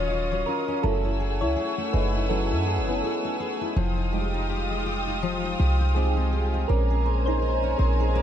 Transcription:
Already playing: D#1 D#3 F#3 C#4 F4 C#5 D#5 F5 D#6
0.10 F4
0.32 F#3
0.46 C#4 F4 A#4
0.68 C#4
0.83 F#1 F#3 A3 C#4 E4 G#4 A4 F#5 G#5 E6
1.05 E4
1.20 G#4
1.41 C#2 E4 C#5
1.56 G#4
1.78 A3
1.93 F#1 D#4 G#4 B4
2.14 E4
2.29 F#3 A3 C#4 E4 G#4 A4
2.51 F#2 E4
2.67 G#4
2.78 F#1
2.87 B3 E4 G#4
3.04 G#4
3.25 A3
3.40 G#4
3.61 E4
3.76 F1 F3 F4 F5 G5 D#6
3.97 D#4
4.12 G3 G#3 D#4 G4
4.34 D#4
4.49 G4
4.71 G#3
4.86 G4
5.07 D#4
5.23 F3
5.44 D#4
5.59 C2 G4
5.81 D#4
5.95 G#3 C4 D#4 G4 G#4
6.17 G#3
6.33 G4
6.54 D#4
6.68 A#1 G#3 A#3 C4 C#4 A#4 G#5 A#5
6.90 G#4
7.06 C5
7.26 D#4 G#4 C5
7.42 C5
7.63 C#4
7.78 A#1 C4 G#4 C5
8.00 G#4
8.08 C5
8.14 A#3 C#4 A#4

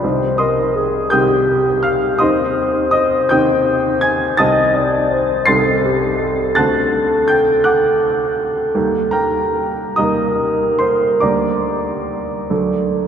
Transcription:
0.03 C2 D#3 C4 G4 C5
0.38 A#4 D#5 C6 D#6
0.76 G#4
1.10 C2 D#3 C4 G4 G5 D#6 G6
1.83 F5 F6
2.19 D#2 D#3 C4 G4 C5 D#5 C6 D#6
2.91 D#5 D#6
3.29 D#2 D#3 C4 G4 G5 D#6 G6
4.01 G#5 G#6
4.37 C2 D#3 C4 G4 D#5 A5 D#6 A6
4.75 D5
5.12 C5
5.46 C2 D#3 C4 G4 A4 C6 A6 C7
5.85 G4
6.21 A4
6.55 D2 D3 C4 F#4 A5 F#6 A6
7.28 G5 G6
7.64 F#5 D6 F#6
8.75 D#2 G3 A#3 G4
9.11 A#4 G5 A#5
9.96 D#2 G3 A#3 G4 A#4 D#5 A#5 D#6
10.79 C5 C6
11.20 D2 G3 A#3 G4 D5 A#5 D6
12.50 D2 F#3 A3 A4

